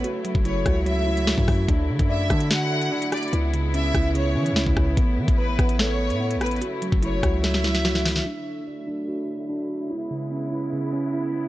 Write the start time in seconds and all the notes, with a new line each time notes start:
Already playing: A3
0.04 C#3 F#3 E4 F#4, closed hi-hat
0.25 F#3, closed hi-hat
0.35 F#1, kick
0.45 E4 C#5, closed hi-hat
0.66 C#2 F#4, kick, cross-stick, closed hi-hat
0.86 F#3 E5, closed hi-hat
1.07 E4
1.17 closed hi-hat
1.27 F#4, snare
1.38 F#2, kick
1.48 F#2, kick, cross-stick, open hi-hat
1.68 D2 D3 D4, kick, closed hi-hat
1.89 D3
1.99 F#2, kick, closed hi-hat
2.10 D5 E5
2.30 D3 D4, kick, cross-stick, closed hi-hat
2.40 closed hi-hat
2.51 F#4 F#5, snare
2.81 closed hi-hat
2.92 D4
3.02 closed hi-hat
3.12 D5, cross-stick, closed hi-hat
3.17 closed hi-hat
3.23 closed hi-hat
3.28 closed hi-hat
3.33 C#2 C#3 G#3 B3 E4, closed hi-hat
3.53 C#3, closed hi-hat
3.74 C#4 E5, closed hi-hat
3.95 C#2 E4, kick, cross-stick, closed hi-hat
4.15 C#3 C#5, closed hi-hat
4.35 E3 C#4
4.46 closed hi-hat
4.51 C#2
4.56 E4, snare
4.66 C#2, kick
4.77 C#2, kick, cross-stick
4.97 A1 C#3 A3 B3, kick, closed hi-hat
5.18 E3
5.28 A1, kick, closed hi-hat
5.38 B4
5.59 A1 B3, kick, cross-stick, closed hi-hat
5.69 closed hi-hat
5.79 A4 C#5, snare
6.10 A2, closed hi-hat
6.20 B3
6.31 closed hi-hat
6.36 A1
6.41 B4, cross-stick, closed hi-hat
6.46 closed hi-hat
6.51 closed hi-hat
6.56 closed hi-hat
6.62 F#3 F#4, closed hi-hat
6.82 F#3, closed hi-hat
6.92 F#1, kick
7.03 E4 C#5, closed hi-hat
7.23 C#2 F#4, kick, cross-stick, closed hi-hat
7.43 F#3 E5, snare, closed hi-hat
7.54 snare
7.64 E4, snare
7.75 snare, closed hi-hat
7.85 F#4, snare
7.95 snare
8.05 snare, open hi-hat
8.16 snare
8.26 D3 F#3 A3 D4 E4
8.67 D5
8.87 D4
9.08 F#4
9.49 D4
9.90 C#3 G#3 B3 E4
10.11 C#3
10.31 C#4
10.52 E4
10.72 C#3
10.93 C#4
11.13 E4